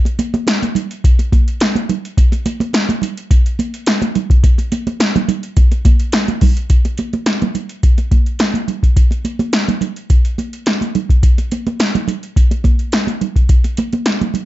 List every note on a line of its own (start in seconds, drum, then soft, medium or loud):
0.05 closed hi-hat medium
0.05 muted conga soft
0.19 closed hi-hat medium
0.19 high conga medium
0.34 closed hi-hat soft
0.34 high conga medium
0.47 snare loud
0.47 closed hi-hat loud
0.47 muted conga soft
0.63 closed hi-hat medium
0.63 muted conga soft
0.63 high conga medium
0.75 closed hi-hat medium
0.75 low conga medium
0.91 closed hi-hat medium
1.04 kick loud
1.04 closed hi-hat loud
1.19 closed hi-hat medium
1.19 muted conga soft
1.32 kick loud
1.32 closed hi-hat medium
1.32 high conga medium
1.48 closed hi-hat soft
1.60 snare loud
1.60 closed hi-hat medium
1.60 muted conga soft
1.75 closed hi-hat soft
1.75 muted conga soft
1.75 high conga medium
1.89 closed hi-hat medium
1.89 low conga medium
2.05 closed hi-hat medium
2.17 kick loud
2.17 closed hi-hat medium
2.17 muted conga soft
2.32 closed hi-hat medium
2.32 muted conga soft
2.46 closed hi-hat medium
2.46 high conga medium
2.60 closed hi-hat soft
2.60 high conga medium
2.73 snare loud
2.73 closed hi-hat loud
2.73 muted conga soft
2.89 closed hi-hat medium
2.89 muted conga soft
2.89 high conga medium
3.02 closed hi-hat medium
3.02 low conga medium
3.17 closed hi-hat medium
3.31 kick loud
3.31 closed hi-hat loud
3.31 muted conga soft
3.46 closed hi-hat medium
3.59 closed hi-hat medium
3.59 high conga medium
3.74 closed hi-hat medium
3.86 snare loud
3.86 closed hi-hat loud
4.02 closed hi-hat medium
4.02 muted conga soft
4.02 high conga medium
4.15 closed hi-hat medium
4.15 low conga medium
4.30 kick medium
4.30 closed hi-hat medium
4.44 kick loud
4.44 closed hi-hat medium
4.44 muted conga soft
4.58 closed hi-hat medium
4.58 muted conga soft
4.72 closed hi-hat medium
4.72 high conga medium
4.87 closed hi-hat soft
4.87 high conga medium
5.00 snare loud
5.00 closed hi-hat medium
5.00 muted conga soft
5.16 closed hi-hat medium
5.16 high conga medium
5.16 low conga medium
5.28 closed hi-hat medium
5.28 low conga medium
5.43 closed hi-hat medium
5.57 kick loud
5.57 closed hi-hat medium
5.57 muted conga soft
5.72 closed hi-hat soft
5.72 muted conga soft
5.85 kick loud
5.85 closed hi-hat medium
5.85 high conga medium
6.00 closed hi-hat soft
6.12 snare loud
6.12 closed hi-hat loud
6.12 muted conga soft
6.28 closed hi-hat medium
6.28 high conga medium
6.41 kick medium
6.41 open hi-hat medium
6.41 low conga medium
6.57 closed hi-hat soft
6.70 kick loud
6.70 closed hi-hat medium
6.85 closed hi-hat soft
6.85 muted conga soft
6.98 closed hi-hat medium
6.98 high conga medium
7.13 closed hi-hat soft
7.13 high conga medium
7.26 snare loud
7.26 closed hi-hat medium
7.26 muted conga soft
7.42 closed hi-hat soft
7.42 muted conga soft
7.42 high conga medium
7.42 low conga medium
7.55 closed hi-hat medium
7.55 low conga medium
7.69 closed hi-hat soft
7.83 kick loud
7.83 closed hi-hat medium
7.83 muted conga soft
7.98 closed hi-hat soft
7.98 muted conga soft
8.11 kick medium
8.11 closed hi-hat medium
8.11 high conga medium
8.26 closed hi-hat soft
8.39 snare loud
8.39 closed hi-hat medium
8.39 muted conga soft
8.54 closed hi-hat medium
8.54 muted conga soft
8.54 high conga medium
8.68 closed hi-hat medium
8.68 low conga medium
8.83 kick medium
8.83 closed hi-hat soft
8.97 kick loud
8.97 closed hi-hat medium
9.11 closed hi-hat soft
9.11 muted conga soft
9.25 closed hi-hat medium
9.25 high conga medium
9.39 closed hi-hat soft
9.39 high conga medium
9.53 snare loud
9.53 closed hi-hat medium
9.68 closed hi-hat soft
9.68 muted conga soft
9.68 high conga medium
9.68 low conga medium
9.81 closed hi-hat medium
9.81 low conga medium
9.96 closed hi-hat soft
10.10 kick loud
10.10 closed hi-hat medium
10.25 closed hi-hat soft
10.38 closed hi-hat medium
10.38 high conga medium
10.53 closed hi-hat soft
10.66 snare loud
10.66 closed hi-hat medium
10.66 muted conga soft
10.81 closed hi-hat medium
10.81 high conga medium
10.95 closed hi-hat medium
10.95 low conga medium
11.09 kick medium
11.09 closed hi-hat soft
11.23 kick loud
11.23 closed hi-hat loud
11.38 closed hi-hat medium
11.38 muted conga soft
11.52 closed hi-hat medium
11.52 high conga medium
11.67 closed hi-hat soft
11.67 high conga medium
11.80 snare loud
11.80 closed hi-hat medium
11.80 muted conga soft
11.95 closed hi-hat soft
11.95 muted conga soft
11.95 high conga medium
11.95 low conga medium
12.08 closed hi-hat medium
12.08 low conga medium
12.23 closed hi-hat soft
12.36 kick loud
12.36 closed hi-hat medium
12.36 muted conga soft
12.51 closed hi-hat soft
12.51 muted conga soft
12.64 kick medium
12.64 closed hi-hat medium
12.64 high conga medium
12.79 closed hi-hat soft
12.92 snare loud
12.92 closed hi-hat medium
13.07 closed hi-hat medium
13.07 high conga medium
13.21 closed hi-hat medium
13.21 low conga medium
13.36 kick medium
13.36 closed hi-hat soft
13.49 kick loud
13.49 closed hi-hat medium
13.64 closed hi-hat medium
13.64 muted conga soft
13.77 closed hi-hat medium
13.77 high conga medium
13.93 closed hi-hat soft
13.93 high conga medium
14.06 snare loud
14.06 closed hi-hat medium
14.21 closed hi-hat soft
14.21 muted conga soft
14.21 high conga medium
14.21 low conga medium
14.34 closed hi-hat medium
14.34 high conga soft
14.34 low conga medium